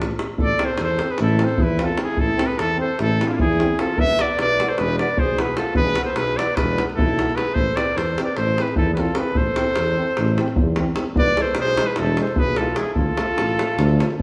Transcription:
Already playing: tuba A1, euphonium F3, alto saxophone A3, trombone A3, cornet D4
0.02 davul high
0.11 davul high
0.19 davul high
0.38 tuba A1, alto saxophone A4, cornet D5, davul low
0.58 euphonium E3, trombone C4, alto saxophone A4, davul high
0.65 cornet C5
0.78 tuba E2, alto saxophone A4, davul high
0.83 cornet C5
0.99 euphonium E3, trombone C4, davul high
1.09 alto saxophone G#4, cornet B4
1.18 tuba A1, alto saxophone E4, davul high
1.22 cornet A4
1.28 davul high
1.39 euphonium E3, trombone C4, alto saxophone A4, davul high
1.44 cornet C5
1.49 davul high
1.58 tuba E2, alto saxophone E4, davul low
1.63 cornet B4
1.78 euphonium E3, trombone C4, alto saxophone F4, davul high
1.84 cornet A4
1.97 euphonium E3, trombone C4, davul high
2.02 alto saxophone E4, cornet G#4
2.17 tuba A1, alto saxophone E4, cornet A4, davul low
2.37 trombone C4, davul high
2.41 euphonium E3
2.46 alto saxophone G#4, cornet B4
2.58 tuba E2, alto saxophone E4, cornet A4, davul high
2.77 euphonium E3, trombone C4, cornet C5
2.81 alto saxophone A4
2.99 tuba A1, alto saxophone E4, cornet A4, davul high
3.19 euphonium E3, trombone C4, davul high
3.28 alto saxophone C4 D4, cornet F4, davul high
3.32 alto saxophone D4, cornet E4 F4
3.40 tuba E2, alto saxophone E4, cornet G#4, davul low
3.59 euphonium E3, trombone C4, davul high
3.78 euphonium E3, trombone C4, alto saxophone F4, cornet A4, davul high
3.97 tuba E1, alto saxophone B4, cornet E5, davul low
4.18 euphonium E3, trombone B3, alto saxophone B4, cornet D5, davul high
4.38 tuba B1, cornet D5, davul high
4.42 alto saxophone B4
4.59 euphonium E3, trombone B3, davul high
4.68 alto saxophone A4, cornet C5
4.78 tuba E1, alto saxophone G#4, cornet B4, davul high
4.88 davul high
4.99 euphonium E3, trombone B3, alto saxophone B4, cornet D5, davul high
5.09 davul high
5.18 tuba B1, alto saxophone G#4, cornet C5, davul low
5.38 euphonium E3, trombone B3, alto saxophone G#4, cornet B4, davul high
5.57 euphonium E3, trombone B3, alto saxophone F4, cornet A4, davul high
5.75 tuba E1, alto saxophone G#4, cornet B4, davul low
5.96 euphonium E3, trombone B3, davul high
6.04 alto saxophone A4, cornet C5
6.14 tuba B1, alto saxophone G#4, cornet B4, davul high
6.27 davul high
6.37 euphonium E3, trombone B3, alto saxophone B4, cornet D5, davul high
6.56 tuba E1, alto saxophone G#4, cornet B4, davul high, davul low
6.69 davul high
6.77 euphonium E3, trombone B3, davul high
6.89 davul high
6.96 tuba B1, alto saxophone E4, cornet A4, davul low
7.08 davul high
7.18 euphonium E3, trombone B3, davul high
7.30 davul high
7.35 euphonium E3, trombone B3, alto saxophone G#4, cornet B4, davul high
7.47 davul high
7.54 tuba A1, alto saxophone A4, cornet C5, davul low
7.76 euphonium E3, trombone C4, alto saxophone B4, cornet D5, davul high
7.95 tuba E2, alto saxophone A4, cornet C5, davul high
8.18 euphonium E3, trombone C4, davul high
8.23 alto saxophone B4, cornet D5
8.35 tuba A1, alto saxophone A4, cornet C5, davul high
8.48 davul high
8.57 euphonium E3, trombone C4, alto saxophone G#4, davul high
8.62 cornet B4
8.68 davul high
8.76 tuba E2, alto saxophone E4, cornet A4, davul low
8.92 alto saxophone G#4, cornet B4
8.96 euphonium E3, trombone C4, alto saxophone F4, cornet A4, davul high
9.15 euphonium E3, trombone C4, alto saxophone G#4, cornet B4, davul high
9.34 tuba A1, alto saxophone A4, cornet C5, davul low
9.56 euphonium E3, trombone C4, davul high
9.76 tuba E2, davul high
9.96 euphonium E3, trombone C4
10.17 tuba A1, davul high
10.28 davul high
10.38 euphonium E3, trombone C4, davul high
10.48 davul high
10.56 tuba E2, davul low
10.76 euphonium E3, trombone C4, davul high
10.96 euphonium E3, trombone C4, davul high
11.16 tuba E1, alto saxophone B4, cornet D5, davul low
11.35 euphonium E3, trombone G#3, davul high
11.39 alto saxophone A4, cornet C5
11.55 tuba B1, alto saxophone G#4, davul high
11.60 cornet C5
11.77 euphonium E3, trombone G#3, davul high
11.86 alto saxophone G#4, cornet B4
11.96 tuba E1, alto saxophone E4, cornet A4, davul high
12.06 davul high
12.17 euphonium E3, trombone G#3, alto saxophone A4, cornet C5, davul high
12.27 davul high
12.36 tuba B1, alto saxophone G#4, cornet B4, davul low
12.56 euphonium E3, trombone G#3, cornet A4, davul high
12.61 alto saxophone F4
12.76 euphonium E3, trombone G#3, alto saxophone E4, cornet G#4, davul high
12.94 tuba D2, alto saxophone F4, cornet A4, davul low
13.17 euphonium F3, trombone A3, davul high
13.38 tuba A1, davul high
13.49 davul high
13.59 euphonium F3, trombone A3, davul high
13.77 tuba D2, davul high
13.89 davul high
13.99 euphonium F3, trombone A3, davul high
14.11 davul high
14.19 tuba A1

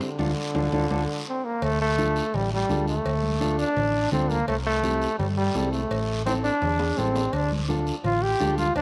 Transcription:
0.01 trombone D3, high timbale, short guiro
0.19 fingered electric bass D2, clean electric guitar D4 F4 A4, high conga, high timbale, long guiro
0.55 fingered electric bass D2, clean electric guitar D4 F4 A4, high conga, high timbale, long guiro
0.72 fingered electric bass D2, clean electric guitar D4 F4 A4, high conga, high timbale, long guiro
0.90 fingered electric bass D2, clean electric guitar D4 F4 A4, high conga, high timbale, long guiro
1.29 trombone C4
1.45 trombone A#3
1.62 fingered electric bass D2, trombone A3, cowbell, high conga, long guiro
1.82 trombone A3
1.98 clean electric guitar D4 F4 A4, high conga, short guiro
2.16 short guiro
2.34 fingered electric bass A1, trombone G3, cowbell, high conga, low conga, long guiro
2.53 trombone G3
2.69 fingered electric bass D2, clean electric guitar D4 F4 A4, high conga, low timbale, short guiro
2.88 trombone A3, short guiro
3.05 fingered electric bass D2, cowbell, high conga, long guiro
3.23 high conga
3.41 clean electric guitar D4 F4 A4, high conga, short guiro
3.59 trombone D4, short guiro
3.77 fingered electric bass A1, cowbell, high conga, low conga, long guiro
4.12 fingered electric bass D2, trombone C4, clean electric guitar D4 F4 A4, high conga, low conga, short guiro
4.30 trombone A#3, high conga, short guiro
4.48 fingered electric bass C2, trombone A3, cowbell, high conga, long guiro
4.66 trombone A3
4.83 clean electric guitar C4 E4 G4, high conga, short guiro
5.02 short guiro
5.19 fingered electric bass G2, trombone G3, cowbell, high conga, low conga, long guiro
5.37 trombone G3
5.55 fingered electric bass C2, clean electric guitar C4 E4 A4, high conga, low timbale, short guiro
5.73 trombone A3, short guiro
5.91 fingered electric bass A1, cowbell, high conga, long guiro
6.26 trombone C4, clean electric guitar C4 E4 A4, high conga, high timbale, short guiro
6.44 trombone D4, short guiro
6.62 fingered electric bass E2, cowbell, high conga, low conga, low timbale, long guiro
6.80 low timbale
6.97 fingered electric bass A1, clean electric guitar C4 E4 A4, trombone C4, high conga, short guiro
7.15 low timbale, short guiro
7.33 fingered electric bass D2, trombone D4, cowbell, high conga, long guiro
7.52 high conga
7.68 clean electric guitar D4 F4 A4, high conga, short guiro
7.87 short guiro
8.04 fingered electric bass A1, trombone F4, cowbell, high conga, low conga, long guiro
8.22 trombone G4
8.40 fingered electric bass D2, clean electric guitar D4 F4 A4, high conga, low timbale, short guiro
8.58 trombone F4, high conga, short guiro
8.76 fingered electric bass D2, trombone D4, cowbell, high conga, low conga, long guiro

